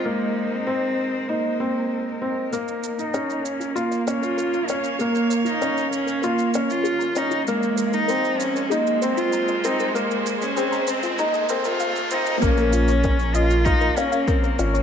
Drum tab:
SH |----------------|xxxxxxxxxxxxxxxx|xxxxxxxxxxxxxxxx|xxxxxxxxxxxxxxxx|
BD |----------------|----------------|----------------|----------------|

SH |xxxxxxxxxxxxxxxx|xxxxxxxxxxxxxxxx|
BD |----------------|o---o---o---o---|